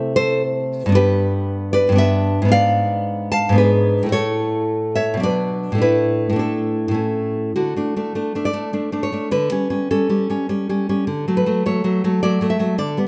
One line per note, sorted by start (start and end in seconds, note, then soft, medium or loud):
0.00 0.85 C3 medium
0.00 0.88 A3 medium
0.00 0.90 E4 medium
0.00 0.12 C5 medium
0.00 0.13 E5 loud
0.16 0.41 A4 medium
0.16 0.42 C5 loud
0.86 1.88 G2 medium
0.86 1.91 B3 medium
0.92 1.92 D4 medium
0.92 1.70 B4 loud
0.96 1.70 G4 medium
1.73 1.98 B4 medium
1.73 1.98 D5 loud
1.89 2.41 G2 medium
1.89 2.44 B3 medium
1.96 2.45 D4 medium
1.96 2.48 B4 medium
1.96 2.49 E5 loud
2.42 3.48 G#2 medium
2.42 3.51 B3 medium
2.49 3.53 D4 medium
2.49 3.28 F5 loud
2.53 3.28 D5 medium
3.32 3.57 F5 medium
3.32 3.57 A5 loud
3.49 4.05 G#2 medium
3.49 4.06 B3 medium
3.56 4.09 D4 medium
3.56 4.09 B4 medium
3.60 4.09 G#4 medium
4.03 5.14 A2 medium
4.03 5.16 A3 medium
4.09 5.18 E4 medium
4.09 4.91 C#5 loud
4.13 4.91 A4 medium
4.95 5.22 C#5 medium
4.95 5.22 E5 medium
5.14 5.75 B2 medium
5.14 5.72 F#3 medium
5.20 5.75 D4 medium
5.20 5.79 D5 medium
5.24 5.78 B4 medium
5.72 6.28 A2 medium
5.72 6.32 A3 medium
5.78 6.35 D4 medium
5.78 6.37 B4 medium
5.82 6.36 E4 medium
6.30 6.87 A2 medium
6.30 6.90 A3 soft
6.36 6.94 D4 medium
6.36 6.94 E4 soft
6.36 6.95 A4 medium
6.88 7.50 A2 medium
6.88 7.52 A3 soft
6.94 7.53 C#4 soft
7.56 7.76 D3 medium
7.56 8.42 F#4 medium
7.77 7.95 A3 soft
7.77 7.96 D4 medium
7.97 8.14 A3 soft
7.97 8.14 D4 medium
8.15 8.34 A3 soft
8.15 8.35 D4 medium
8.35 8.52 A3 soft
8.35 8.53 D4 medium
8.45 9.01 D5 medium
8.53 8.72 A3 medium
8.53 8.72 D4 medium
8.73 8.91 A3 medium
8.73 8.92 D4 medium
8.92 9.11 A3 soft
8.92 9.12 D4 medium
9.03 9.31 C#5 medium
9.12 9.30 A3 soft
9.12 9.30 D4 soft
9.31 9.51 D3 medium
9.31 9.88 B4 medium
9.52 9.69 G3 soft
9.52 9.69 C#4 medium
9.70 9.89 G3 soft
9.70 9.90 C#4 medium
9.91 10.08 G3 soft
9.91 10.09 C#4 medium
9.91 11.04 A4 medium
10.09 10.28 G3 soft
10.09 10.29 C#4 medium
10.30 10.48 G3 soft
10.30 10.48 C#4 medium
10.49 10.68 G3 medium
10.49 10.69 C#4 medium
10.69 10.88 G3 soft
10.69 10.88 C#4 medium
10.89 11.06 G3 soft
10.89 11.07 C#4 medium
11.07 11.26 D3 medium
11.28 11.45 F#3 soft
11.28 11.46 A3 medium
11.37 11.65 B4 medium
11.46 11.65 F#3 medium
11.46 11.65 A3 medium
11.66 11.83 F#3 medium
11.66 11.83 A3 medium
11.66 12.21 C#5 medium
11.84 12.03 F#3 medium
11.84 12.03 A3 medium
12.04 12.22 F#3 soft
12.04 12.22 A3 medium
12.23 12.40 F#3 medium
12.23 12.41 A3 medium
12.23 12.50 D5 medium
12.41 12.58 F#3 medium
12.41 12.59 A3 medium
12.50 12.78 E5 medium
12.59 12.77 F#3 soft
12.59 12.77 A3 medium
12.78 12.97 D3 medium
12.78 13.06 D5 medium
12.97 13.07 G3 soft
12.97 13.07 B3 medium